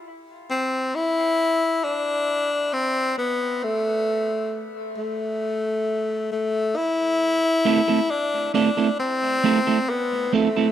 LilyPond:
<<
  \new Staff \with { instrumentName = "Clean electric guitar" } { \time 4/4 \key a \minor \tempo 4 = 67 r1 | r1 | r8 <a c' e' a'>16 <a c' e' a'>16 r8 <a c' e' a'>16 <a c' e' a'>16 r8 <a c' e' a'>16 <a c' e' a'>16 r8 <a c' e' a'>16 <a c' e' a'>16 | }
  \new Staff \with { instrumentName = "Tenor saxophone" } { \time 4/4 \key a \minor r8 c'8 e'4 d'4 c'8 b8 | a4 r8 a4. a8 e'8~ | e'4 d'8 d'8 c'4 b8 a8 | }
>>